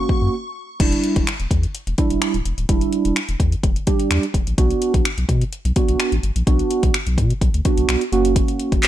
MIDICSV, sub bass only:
0, 0, Header, 1, 2, 480
1, 0, Start_track
1, 0, Tempo, 472441
1, 814, Time_signature, 4, 2, 24, 8
1, 9020, End_track
2, 0, Start_track
2, 0, Title_t, "Sub bass"
2, 0, Program_c, 0, 38
2, 94, Note_on_c, 0, 42, 49
2, 144, Note_off_c, 0, 42, 0
2, 221, Note_on_c, 0, 42, 90
2, 292, Note_off_c, 0, 42, 0
2, 813, Note_on_c, 0, 28, 104
2, 966, Note_off_c, 0, 28, 0
2, 1180, Note_on_c, 0, 28, 95
2, 1252, Note_off_c, 0, 28, 0
2, 1421, Note_on_c, 0, 28, 99
2, 1492, Note_off_c, 0, 28, 0
2, 1532, Note_on_c, 0, 40, 103
2, 1685, Note_off_c, 0, 40, 0
2, 1901, Note_on_c, 0, 28, 84
2, 1972, Note_off_c, 0, 28, 0
2, 2141, Note_on_c, 0, 28, 83
2, 2213, Note_off_c, 0, 28, 0
2, 2381, Note_on_c, 0, 26, 77
2, 2453, Note_off_c, 0, 26, 0
2, 2494, Note_on_c, 0, 28, 90
2, 2574, Note_off_c, 0, 28, 0
2, 2620, Note_on_c, 0, 26, 102
2, 2692, Note_off_c, 0, 26, 0
2, 2733, Note_on_c, 0, 28, 106
2, 2886, Note_off_c, 0, 28, 0
2, 3101, Note_on_c, 0, 28, 98
2, 3172, Note_off_c, 0, 28, 0
2, 3341, Note_on_c, 0, 28, 103
2, 3413, Note_off_c, 0, 28, 0
2, 3452, Note_on_c, 0, 40, 103
2, 3605, Note_off_c, 0, 40, 0
2, 3693, Note_on_c, 0, 28, 95
2, 3846, Note_off_c, 0, 28, 0
2, 4174, Note_on_c, 0, 40, 98
2, 4255, Note_off_c, 0, 40, 0
2, 4411, Note_on_c, 0, 28, 84
2, 4493, Note_off_c, 0, 28, 0
2, 4541, Note_on_c, 0, 34, 91
2, 4613, Note_off_c, 0, 34, 0
2, 4654, Note_on_c, 0, 35, 103
2, 4806, Note_off_c, 0, 35, 0
2, 5021, Note_on_c, 0, 35, 98
2, 5092, Note_off_c, 0, 35, 0
2, 5261, Note_on_c, 0, 35, 94
2, 5332, Note_off_c, 0, 35, 0
2, 5372, Note_on_c, 0, 47, 109
2, 5525, Note_off_c, 0, 47, 0
2, 5741, Note_on_c, 0, 35, 93
2, 5812, Note_off_c, 0, 35, 0
2, 5980, Note_on_c, 0, 35, 84
2, 6052, Note_off_c, 0, 35, 0
2, 6220, Note_on_c, 0, 33, 94
2, 6292, Note_off_c, 0, 33, 0
2, 6333, Note_on_c, 0, 31, 92
2, 6414, Note_off_c, 0, 31, 0
2, 6460, Note_on_c, 0, 34, 92
2, 6532, Note_off_c, 0, 34, 0
2, 6573, Note_on_c, 0, 35, 110
2, 6726, Note_off_c, 0, 35, 0
2, 6941, Note_on_c, 0, 35, 100
2, 7012, Note_off_c, 0, 35, 0
2, 7180, Note_on_c, 0, 35, 100
2, 7292, Note_on_c, 0, 47, 90
2, 7308, Note_off_c, 0, 35, 0
2, 7445, Note_off_c, 0, 47, 0
2, 7533, Note_on_c, 0, 35, 103
2, 7614, Note_off_c, 0, 35, 0
2, 7661, Note_on_c, 0, 38, 85
2, 7732, Note_off_c, 0, 38, 0
2, 7901, Note_on_c, 0, 35, 86
2, 7972, Note_off_c, 0, 35, 0
2, 8012, Note_on_c, 0, 35, 94
2, 8094, Note_off_c, 0, 35, 0
2, 8253, Note_on_c, 0, 30, 101
2, 8558, Note_off_c, 0, 30, 0
2, 8860, Note_on_c, 0, 30, 96
2, 8932, Note_off_c, 0, 30, 0
2, 9020, End_track
0, 0, End_of_file